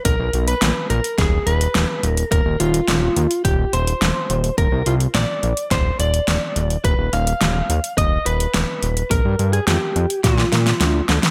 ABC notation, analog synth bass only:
X:1
M:4/4
L:1/16
Q:1/4=106
K:Eb
V:1 name="Analog synth bass" clef=bass
_C,, C,, C,, z B,,, z B,,, z E,,, z E,,, z E,,, z E,,, z | E,,, E,,, E,,, z E,,, z E,, z E,,, z E,,, z E,,, z E,,, z | E,,, C,, C,, z B,,, z B,,, z E,,, z E,,, z E,,, z E,,, z | E,,, E,,, E,,, z E,,, z E,, z E,,, z E,,, z E,,, z E,,, z |
B,,, G,, G,, z F,, z F,, z B,, z B,, z D,, z D,, z |]